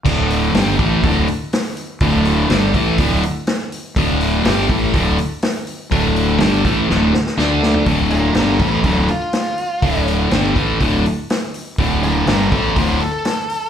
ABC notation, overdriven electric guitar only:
X:1
M:4/4
L:1/8
Q:1/4=123
K:Dm
V:1 name="Overdriven electric guitar" clef=bass
[D,,A,,D,]2 [G,,D,G,] [A,,E,A,] [D,,A,,D,] z3 | [D,,A,,D,]2 [G,,D,G,] [A,,E,A,] [D,,A,,D,] z3 | [D,,A,,D,]2 [G,,D,G,] [A,,E,A,] [D,,A,,D,] z3 | [D,,A,,D,]2 [G,,D,G,] [A,,E,A,] [D,,A,,D,] z [D,A,D]2 |
[D,,A,,D,]2 [G,,D,G,] [A,,E,A,] [D,,A,,D,] z3 | [D,,A,,D,]2 [G,,D,G,] [A,,E,A,] [D,,A,,D,] z3 | [D,,A,,D,]2 [G,,D,G,] [A,,E,A,] [D,,A,,D,] z3 |]